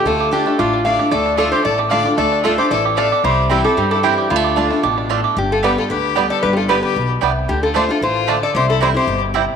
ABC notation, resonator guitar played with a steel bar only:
X:1
M:4/4
L:1/16
Q:1/4=226
K:Ddor
V:1 name="Resonator guitar played with a steel bar"
A4 G4 F4 f4 | d4 A2 c2 d2 z2 f4 | d4 A2 c2 d2 z2 d4 | c4 G2 A2 G2 A2 G4 |
F12- F2 z2 | G2 A2 B2 A2 B6 d2 | B3/2 G/2 A2 B2 B4 z6 | G2 A2 c2 A2 c6 d2 |
c2 A2 c2 c4 z6 |]